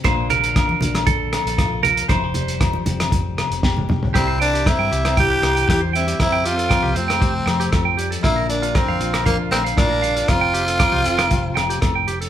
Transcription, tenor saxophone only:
X:1
M:4/4
L:1/8
Q:1/4=117
K:F
V:1 name="Tenor saxophone"
z8 | z8 | C D E2 G2 G E | E F2 C4 z |
E D C2 B, C D2 | F6 z2 |]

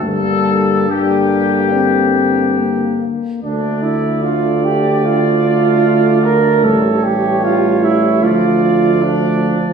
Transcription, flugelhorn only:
X:1
M:4/4
L:1/8
Q:1/4=75
K:Gm
V:1 name="Flugelhorn"
B,2 B,4- B, z | [K:Dm] D E F G F3 B | A G F E F2 D2 |]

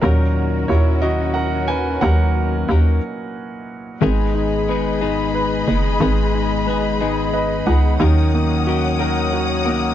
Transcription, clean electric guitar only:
X:1
M:6/8
L:1/8
Q:3/8=60
K:G#m
V:1 name="Clean electric guitar"
[D,F,CDA]2 [F,CDA] [D,F,CDA]2 [CDA] | [D,F,CDA]2 [F,CDA] z3 | [G,,D,G,B,DG]2 [G,B,DG] [G,,D,G,B,DG]2 [G,B,DG] | [G,,D,G,B,DG]2 [G,B,DG] [G,,D,G,B,DG]2 [G,B,DG] |
[D,F,CDA]2 [F,CDA] [D,F,CDA]2 [CDA] |]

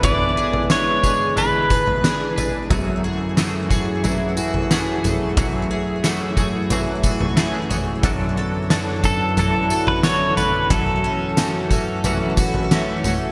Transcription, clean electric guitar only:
X:1
M:4/4
L:1/8
Q:1/4=90
K:F#m
V:1 name="Clean electric guitar"
[E,DGB] [DGB] [E,DGB] [DGB] [E,DGB] [DGB] [E,DGB] [DGB] | [F,,E,F,A,FG] [E,A,FG] [E,A,FG] [E,A,FG] [F,,E,F,A,FG] [E,A,FG] [E,A,FG] [E,A,FG] | [F,,E,F,A,FG] [E,A,FG] [E,A,FG] [E,A,FG] [F,,E,F,A,FG] [E,A,FG] [E,A,FG] [E,A,FG] | [F,,E,F,DFA] [E,DFA] [E,DFA] [E,DFA] [F,,E,F,DFA] [E,DFA] [E,DFA] [E,DFA] |
[F,,E,F,A,CF] [E,A,CF] [E,A,CF] [E,A,CF] [F,,E,F,A,CF] [E,A,CF] [E,A,CF] [E,A,CF] |]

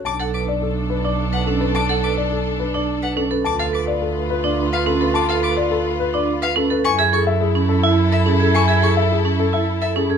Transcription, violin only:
X:1
M:3/4
L:1/16
Q:1/4=106
K:Bdor
V:1 name="Violin"
d' f d' z6 f z2 | d' f d' z6 f z2 | d' =f d' z6 f z2 | d' =f d' z6 f z2 |
c' e c' z6 e z2 | c' e c' z6 e z2 |]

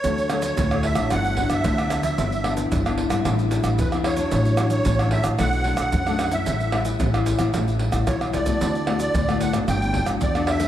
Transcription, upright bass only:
X:1
M:4/4
L:1/16
Q:1/4=112
K:D
V:1 name="Upright bass" clef=bass
D,,4 D,,3 A,,, G,,,3 G,,, D,,4 | G,,,4 G,,,3 ^G,,, A,,,3 A,,, E,,4 | A,,,4 A,,,3 A,,, B,,,3 B,,, F,,4 | A,,,4 A,,,3 A,,, A,,,3 A,,, B,,,2 C,,2 |
D,,4 D,,3 ^G,,, =G,,,3 G,,, E,,4 |]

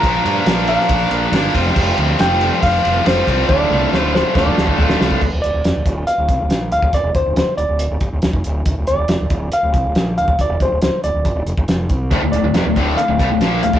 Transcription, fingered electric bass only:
X:1
M:4/4
L:1/16
Q:1/4=139
K:Dm
V:1 name="Fingered electric bass" clef=bass
B,,,2 G,,2 B,,,4 B,,,2 B,,,2 G,,,2 F,,,2 | F,,,2 D,,2 F,,,4 F,,,2 F,,,2 F,,,2 C,,2 | D,,,2 C,,2 D,,,4 D,,,2 D,,,2 D,,,2 C,,2 | D,,, D,,, D,,, D,,, F,,, D,,, D,,,2 z D,,, C,, D,,, B,,,2 D,,, D,,, |
D,,, E,,, D,,, D,,, D,,, z D,,, D,,,2 D,,, G,,, D,,, D,,, F,,, D,,,2 | D,,, D,,, D,,, D,,, F,,, D,,, D,,,2 z D,,, C,, D,,, B,,,2 D,,, D,,, | D,,, E,,, D,,, D,,, D,,, z D,,, D,,, G,,, D,,, F,,, D,,, F,,,2 C,,2 | D,,, D,,, D,,, D,,, F,,, D,,, D,,,2 z D,,, C,, D,,, B,,,2 D,,, D,,, |]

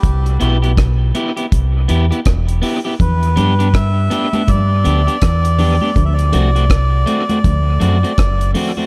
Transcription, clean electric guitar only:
X:1
M:4/4
L:1/16
Q:"Swing 16ths" 1/4=81
K:Em
V:1 name="Clean electric guitar"
z2 [B,EG] [B,EG] z2 [B,EG] [B,EG] z2 [B,EG] [B,EG] z2 [B,EG] [B,EG] | z2 [B,DG] [B,DG] z2 [B,DG] [B,DG] z2 [B,DG] [B,DG] z2 [B,DG] [B,DG] | z2 [A,CF] [A,CF] z2 [A,CF] [A,CF] z2 [A,CF] [A,CF] z2 [A,CF] [A,CF] |]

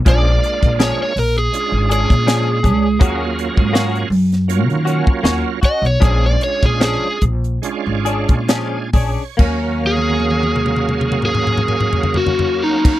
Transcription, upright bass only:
X:1
M:4/4
L:1/16
Q:"Swing 16ths" 1/4=76
K:Ebm
V:1 name="Upright bass" clef=bass
B,,,2 z B,,,2 z B,,,2 z A,,,2 B,,3 ^C,,2 | E,,3 A,,3 G,,3 E,2 z E,, z2 C,, | B,,,2 z B,,,2 z B,,,2 z A,,,2 B,,3 B,,, z | E,,16 |]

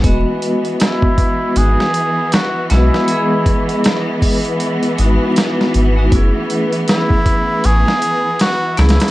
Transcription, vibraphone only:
X:1
M:4/4
L:1/16
Q:"Swing 16ths" 1/4=79
K:E
V:1 name="Vibraphone"
[G,B,Fd]8 [G,B,DF] z4 z [G,B,Fd]2 | [G,B,Gd]8- [G,B,Gd]2 [G,B,DF]4- [G,B,DF] [G,B,DF] | [A,CEG]8 [A,CEG] z4 z [A,CEG]2 |]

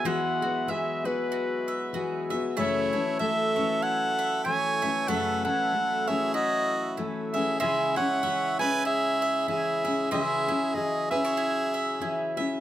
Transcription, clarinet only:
X:1
M:4/4
L:1/8
Q:"Swing" 1/4=95
K:F#dor
V:1 name="Clarinet"
f2 e B4 z | c2 e2 f2 g2 | f f2 e d2 z e | e f2 g e2 e2 |
e2 d e4 z |]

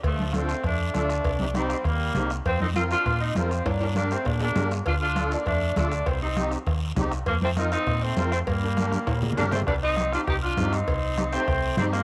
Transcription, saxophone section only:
X:1
M:4/4
L:1/8
Q:1/4=200
K:Cdor
V:1 name="Saxophone section"
[F,A,]2 [A,C]2 [A,D]2 [A,D]2- | [A,D]2 [G,C]2 [G,B,]3 z | [F,C] [CE] [CF] [DF]2 [CE] [F,C]2 | [B,D]2 [B,D] [A,C] [B,D] [B,D]2 z |
[DF] [DF]2 [B,D] [A,D]2 [A,D]2 | [G,C] [CE]2 z4 z | [F,B,] [A,C] [CE] [CE]2 [A,C]2 [A,C] | [G,B,]6 [B,D] [A,C] |
[G,D] [CE]2 [DF] [EG] [DF]2 [CE]- | [CE]3 [A,C]3 [G,C] [F,B,] |]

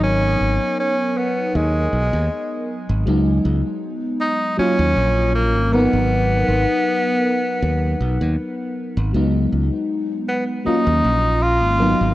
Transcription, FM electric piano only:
X:1
M:4/4
L:1/8
Q:"Swing 16ths" 1/4=79
K:G#dor
V:1 name="FM electric piano"
[F,B,DA]8 | [F,G,B,D]4 [F,A,CE]3 [F,B,DA]- | [F,B,DA]8 | [F,G,B,D]4 [F,A,CE]3 [F,B,DA] |]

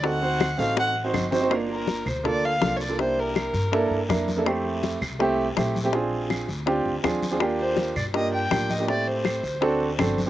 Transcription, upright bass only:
X:1
M:4/4
L:1/8
Q:1/4=163
K:Gm
V:1 name="Upright bass" clef=bass
D,,3 A,,,3 G,,,2- | G,,,3 D,,3 C,,2- | C,,3 G,,2 G,, F,,2- | F,,3 C,,3 B,,,2- |
B,,,3 D,,2 D,, E,,2- | E,,3 G,,3 A,,2- | A,,3 D,,3 G,,,2 |]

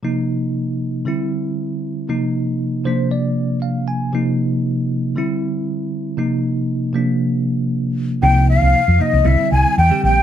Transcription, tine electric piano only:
X:1
M:4/4
L:1/16
Q:"Swing 16ths" 1/4=117
K:Cm
V:1 name="Tine electric piano"
z16 | z6 c2 d4 f2 a2 | z16 | z16 |
z16 |]
V:2 name="Tine electric piano" clef=bass
[C,F,B,E]8 [D,G,C=E]8 | [C,F,B,E]6 [C,F,B,D]8- [C,F,B,D]2 | [C,F,B,E]8 [D,G,C=E]8 | [C,F,B,E]6 [C,F,B,D]8- [C,F,B,D]2 |
[C,F,B,E]4 z2 [C,F,B,E]2 [D,G,C=E]4 z [D,G,CG]2 z |]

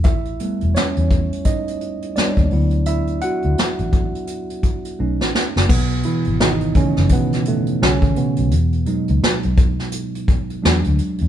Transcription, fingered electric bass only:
X:1
M:4/4
L:1/16
Q:"Swing 16ths" 1/4=85
K:Bmix
V:1 name="Fingered electric bass" clef=bass
A,,,2 z E,,, z E,,2 z6 D,, =D,,2- | =D,,2 z D,, z A,,,2 z4 z B,,, A,,, z F,,, | B,,,2 z G,,,3 z F,,, z4 B,,, A,,, z B,,, | E,,2 z C,, z B,,,2 z4 z E,, =D,, z E,, |]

